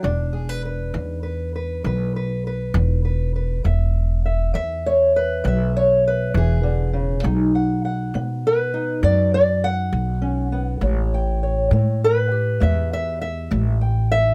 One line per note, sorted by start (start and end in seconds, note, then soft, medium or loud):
0.03 0.90 E1 medium
0.03 0.57 E3 medium
0.03 3.61 D4 soft
0.33 0.49 G#4 soft
0.49 0.64 B4 soft
0.65 1.23 B4 soft
0.94 1.80 E2 medium
0.94 1.48 E3 medium
1.23 1.55 B4 soft
1.56 1.86 B4 soft
1.84 2.70 B1 medium
1.84 2.38 E3 medium
1.84 2.16 B4 soft
2.16 2.46 B4 soft
2.47 3.04 B4 soft
2.74 3.60 E1 loud
2.74 3.29 E3 medium
3.05 3.35 B4 soft
3.36 3.66 B4 soft
3.64 4.51 E1 medium
3.64 4.18 E3 medium
3.64 4.24 E5 soft
4.26 4.54 E5 soft
4.54 5.41 E2 medium
4.54 5.08 E3 medium
4.54 5.45 E5 medium
4.86 5.15 C#5 medium
5.16 5.75 B4 medium
5.44 6.30 B1 medium
5.44 5.98 E3 medium
5.44 6.36 E5 medium
5.77 6.05 C#5 medium
6.08 6.96 B4 medium
6.34 7.20 E1 loud
6.34 6.63 E3 medium
6.34 7.55 G#4 medium
6.63 6.93 D3 medium
6.93 7.23 C#3 medium
7.23 8.10 B1 loud
7.23 7.78 B3 medium
7.23 8.72 D#4 soft
7.55 7.84 F#5 soft
7.85 9.63 F#5 soft
8.14 9.00 B2 medium
8.14 8.68 B3 medium
8.47 9.04 B4 medium
8.74 10.21 D#4 soft
9.03 9.89 F#2 loud
9.03 9.57 B3 medium
9.03 9.33 D5 medium
9.34 9.64 D5 medium
9.64 10.83 F#5 loud
9.93 10.78 B1 medium
10.22 10.52 C#4 medium
10.52 10.82 B3 medium
10.81 11.68 A1 medium
10.81 11.36 A3 medium
10.81 11.42 C#5 soft
11.14 12.62 G5 soft
11.43 12.02 C#5 soft
11.71 12.57 A2 medium
11.71 12.26 A3 medium
12.04 13.23 B4 loud
12.31 14.34 G4 soft
12.60 13.47 E2 medium
12.60 13.15 A3 medium
12.60 12.92 E5 medium
12.93 13.20 E5 loud
13.21 13.81 E5 medium
13.51 14.34 A1 loud
13.51 14.05 A3 medium
13.81 14.11 G5 medium
14.12 14.34 E5 loud